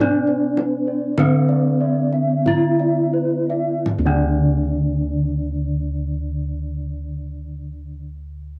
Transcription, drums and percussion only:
0, 0, Header, 1, 2, 480
1, 0, Start_track
1, 0, Tempo, 1174168
1, 481, Tempo, 1279318
1, 961, Tempo, 1405152
1, 1441, Time_signature, 4, 2, 24, 8
1, 1441, Tempo, 1474201
1, 2981, End_track
2, 0, Start_track
2, 0, Title_t, "Kendang"
2, 112, Note_on_c, 9, 62, 20
2, 152, Note_off_c, 9, 62, 0
2, 234, Note_on_c, 9, 63, 47
2, 275, Note_off_c, 9, 63, 0
2, 481, Note_on_c, 9, 63, 58
2, 481, Note_on_c, 9, 64, 57
2, 518, Note_off_c, 9, 63, 0
2, 518, Note_off_c, 9, 64, 0
2, 597, Note_on_c, 9, 62, 19
2, 635, Note_off_c, 9, 62, 0
2, 836, Note_on_c, 9, 62, 25
2, 874, Note_off_c, 9, 62, 0
2, 962, Note_on_c, 9, 64, 60
2, 996, Note_off_c, 9, 64, 0
2, 1076, Note_on_c, 9, 62, 25
2, 1111, Note_off_c, 9, 62, 0
2, 1317, Note_on_c, 9, 62, 24
2, 1352, Note_off_c, 9, 62, 0
2, 1441, Note_on_c, 9, 64, 86
2, 1473, Note_off_c, 9, 64, 0
2, 2981, End_track
0, 0, End_of_file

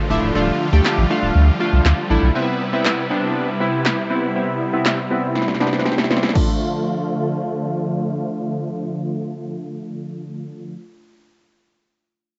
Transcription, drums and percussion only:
0, 0, Header, 1, 2, 480
1, 0, Start_track
1, 0, Tempo, 500000
1, 339, Time_signature, 4, 2, 24, 8
1, 11890, End_track
2, 0, Start_track
2, 0, Title_t, "Drums"
2, 819, Note_on_c, 9, 39, 114
2, 821, Note_on_c, 9, 38, 87
2, 915, Note_off_c, 9, 39, 0
2, 917, Note_off_c, 9, 38, 0
2, 1781, Note_on_c, 9, 39, 118
2, 1783, Note_on_c, 9, 38, 97
2, 1877, Note_off_c, 9, 39, 0
2, 1879, Note_off_c, 9, 38, 0
2, 2739, Note_on_c, 9, 39, 110
2, 2741, Note_on_c, 9, 38, 84
2, 2835, Note_off_c, 9, 39, 0
2, 2837, Note_off_c, 9, 38, 0
2, 3701, Note_on_c, 9, 39, 109
2, 3703, Note_on_c, 9, 38, 93
2, 3797, Note_off_c, 9, 39, 0
2, 3799, Note_off_c, 9, 38, 0
2, 4660, Note_on_c, 9, 39, 109
2, 4662, Note_on_c, 9, 38, 86
2, 4756, Note_off_c, 9, 39, 0
2, 4758, Note_off_c, 9, 38, 0
2, 5139, Note_on_c, 9, 38, 53
2, 5199, Note_off_c, 9, 38, 0
2, 5199, Note_on_c, 9, 38, 47
2, 5261, Note_off_c, 9, 38, 0
2, 5261, Note_on_c, 9, 38, 58
2, 5320, Note_off_c, 9, 38, 0
2, 5320, Note_on_c, 9, 38, 52
2, 5379, Note_off_c, 9, 38, 0
2, 5379, Note_on_c, 9, 38, 65
2, 5439, Note_off_c, 9, 38, 0
2, 5439, Note_on_c, 9, 38, 55
2, 5499, Note_off_c, 9, 38, 0
2, 5499, Note_on_c, 9, 38, 69
2, 5560, Note_off_c, 9, 38, 0
2, 5560, Note_on_c, 9, 38, 60
2, 5620, Note_off_c, 9, 38, 0
2, 5620, Note_on_c, 9, 38, 74
2, 5680, Note_off_c, 9, 38, 0
2, 5680, Note_on_c, 9, 38, 66
2, 5741, Note_off_c, 9, 38, 0
2, 5741, Note_on_c, 9, 38, 85
2, 5799, Note_off_c, 9, 38, 0
2, 5799, Note_on_c, 9, 38, 75
2, 5860, Note_off_c, 9, 38, 0
2, 5860, Note_on_c, 9, 38, 84
2, 5918, Note_off_c, 9, 38, 0
2, 5918, Note_on_c, 9, 38, 78
2, 5979, Note_off_c, 9, 38, 0
2, 5979, Note_on_c, 9, 38, 96
2, 6039, Note_off_c, 9, 38, 0
2, 6039, Note_on_c, 9, 38, 82
2, 6099, Note_on_c, 9, 49, 83
2, 6100, Note_on_c, 9, 36, 103
2, 6135, Note_off_c, 9, 38, 0
2, 6195, Note_off_c, 9, 49, 0
2, 6196, Note_off_c, 9, 36, 0
2, 11890, End_track
0, 0, End_of_file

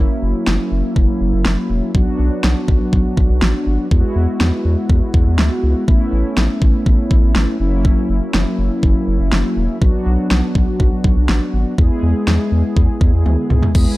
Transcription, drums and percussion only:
0, 0, Header, 1, 2, 480
1, 0, Start_track
1, 0, Tempo, 491803
1, 1899, Time_signature, 4, 2, 24, 8
1, 13636, End_track
2, 0, Start_track
2, 0, Title_t, "Drums"
2, 460, Note_on_c, 9, 38, 112
2, 558, Note_off_c, 9, 38, 0
2, 938, Note_on_c, 9, 36, 90
2, 1036, Note_off_c, 9, 36, 0
2, 1419, Note_on_c, 9, 38, 100
2, 1516, Note_off_c, 9, 38, 0
2, 1900, Note_on_c, 9, 36, 104
2, 1998, Note_off_c, 9, 36, 0
2, 2380, Note_on_c, 9, 38, 113
2, 2478, Note_off_c, 9, 38, 0
2, 2619, Note_on_c, 9, 36, 86
2, 2717, Note_off_c, 9, 36, 0
2, 2859, Note_on_c, 9, 36, 88
2, 2956, Note_off_c, 9, 36, 0
2, 3098, Note_on_c, 9, 36, 94
2, 3195, Note_off_c, 9, 36, 0
2, 3338, Note_on_c, 9, 38, 106
2, 3435, Note_off_c, 9, 38, 0
2, 3820, Note_on_c, 9, 36, 102
2, 3917, Note_off_c, 9, 36, 0
2, 4300, Note_on_c, 9, 38, 113
2, 4398, Note_off_c, 9, 38, 0
2, 4778, Note_on_c, 9, 36, 89
2, 4876, Note_off_c, 9, 36, 0
2, 5017, Note_on_c, 9, 36, 96
2, 5115, Note_off_c, 9, 36, 0
2, 5257, Note_on_c, 9, 38, 105
2, 5355, Note_off_c, 9, 38, 0
2, 5740, Note_on_c, 9, 36, 103
2, 5837, Note_off_c, 9, 36, 0
2, 6221, Note_on_c, 9, 38, 113
2, 6318, Note_off_c, 9, 38, 0
2, 6458, Note_on_c, 9, 36, 88
2, 6556, Note_off_c, 9, 36, 0
2, 6698, Note_on_c, 9, 36, 88
2, 6796, Note_off_c, 9, 36, 0
2, 6937, Note_on_c, 9, 36, 95
2, 7035, Note_off_c, 9, 36, 0
2, 7178, Note_on_c, 9, 38, 100
2, 7276, Note_off_c, 9, 38, 0
2, 7660, Note_on_c, 9, 36, 103
2, 7758, Note_off_c, 9, 36, 0
2, 8141, Note_on_c, 9, 38, 114
2, 8239, Note_off_c, 9, 38, 0
2, 8619, Note_on_c, 9, 36, 89
2, 8716, Note_off_c, 9, 36, 0
2, 9099, Note_on_c, 9, 38, 102
2, 9196, Note_off_c, 9, 38, 0
2, 9580, Note_on_c, 9, 36, 103
2, 9678, Note_off_c, 9, 36, 0
2, 10062, Note_on_c, 9, 38, 112
2, 10159, Note_off_c, 9, 38, 0
2, 10299, Note_on_c, 9, 36, 87
2, 10397, Note_off_c, 9, 36, 0
2, 10539, Note_on_c, 9, 36, 87
2, 10637, Note_off_c, 9, 36, 0
2, 10778, Note_on_c, 9, 36, 96
2, 10876, Note_off_c, 9, 36, 0
2, 11018, Note_on_c, 9, 38, 102
2, 11116, Note_off_c, 9, 38, 0
2, 11501, Note_on_c, 9, 36, 106
2, 11598, Note_off_c, 9, 36, 0
2, 11982, Note_on_c, 9, 38, 114
2, 12080, Note_off_c, 9, 38, 0
2, 12459, Note_on_c, 9, 36, 88
2, 12557, Note_off_c, 9, 36, 0
2, 12698, Note_on_c, 9, 36, 97
2, 12795, Note_off_c, 9, 36, 0
2, 12940, Note_on_c, 9, 48, 53
2, 13038, Note_off_c, 9, 48, 0
2, 13179, Note_on_c, 9, 45, 82
2, 13276, Note_off_c, 9, 45, 0
2, 13299, Note_on_c, 9, 43, 86
2, 13396, Note_off_c, 9, 43, 0
2, 13418, Note_on_c, 9, 49, 88
2, 13420, Note_on_c, 9, 36, 106
2, 13516, Note_off_c, 9, 49, 0
2, 13517, Note_off_c, 9, 36, 0
2, 13636, End_track
0, 0, End_of_file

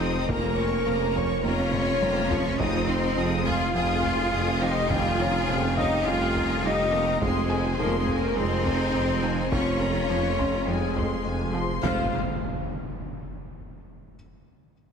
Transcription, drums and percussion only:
0, 0, Header, 1, 2, 480
1, 0, Start_track
1, 0, Key_signature, -4, "minor"
1, 0, Tempo, 576923
1, 241, Time_signature, 4, 2, 24, 8
1, 12416, End_track
2, 0, Start_track
2, 0, Title_t, "Taiko and cinematic ensemble drums"
2, 2, Note_on_c, 9, 37, 42
2, 86, Note_off_c, 9, 37, 0
2, 241, Note_on_c, 9, 41, 111
2, 324, Note_off_c, 9, 41, 0
2, 965, Note_on_c, 9, 43, 62
2, 1048, Note_off_c, 9, 43, 0
2, 1442, Note_on_c, 9, 45, 92
2, 1525, Note_off_c, 9, 45, 0
2, 1682, Note_on_c, 9, 48, 100
2, 1766, Note_off_c, 9, 48, 0
2, 1920, Note_on_c, 9, 43, 103
2, 2004, Note_off_c, 9, 43, 0
2, 2160, Note_on_c, 9, 41, 109
2, 2243, Note_off_c, 9, 41, 0
2, 2882, Note_on_c, 9, 43, 64
2, 2965, Note_off_c, 9, 43, 0
2, 3360, Note_on_c, 9, 43, 69
2, 3444, Note_off_c, 9, 43, 0
2, 4079, Note_on_c, 9, 41, 116
2, 4162, Note_off_c, 9, 41, 0
2, 4801, Note_on_c, 9, 43, 63
2, 4884, Note_off_c, 9, 43, 0
2, 5284, Note_on_c, 9, 43, 66
2, 5367, Note_off_c, 9, 43, 0
2, 6003, Note_on_c, 9, 41, 113
2, 6086, Note_off_c, 9, 41, 0
2, 6723, Note_on_c, 9, 43, 62
2, 6807, Note_off_c, 9, 43, 0
2, 7206, Note_on_c, 9, 43, 63
2, 7289, Note_off_c, 9, 43, 0
2, 7683, Note_on_c, 9, 37, 45
2, 7766, Note_off_c, 9, 37, 0
2, 7922, Note_on_c, 9, 41, 107
2, 8005, Note_off_c, 9, 41, 0
2, 8646, Note_on_c, 9, 43, 65
2, 8729, Note_off_c, 9, 43, 0
2, 9126, Note_on_c, 9, 43, 62
2, 9210, Note_off_c, 9, 43, 0
2, 9605, Note_on_c, 9, 37, 45
2, 9689, Note_off_c, 9, 37, 0
2, 9844, Note_on_c, 9, 43, 103
2, 9927, Note_off_c, 9, 43, 0
2, 12416, End_track
0, 0, End_of_file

